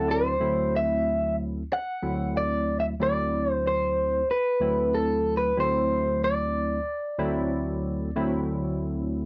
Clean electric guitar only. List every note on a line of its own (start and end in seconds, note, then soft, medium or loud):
0.00 0.11 A4 medium
0.11 0.76 C5 medium
0.76 1.35 E5 medium
1.73 2.37 F#5 medium
2.37 2.80 D5 medium
2.80 2.85 E5 medium
3.03 3.52 D5 medium
3.52 3.67 C5 medium
3.67 4.30 C5 medium
4.31 4.96 B4 medium
4.94 5.34 A4 medium
5.37 5.59 B4 medium
5.60 6.24 C5 medium
6.24 8.77 D5 medium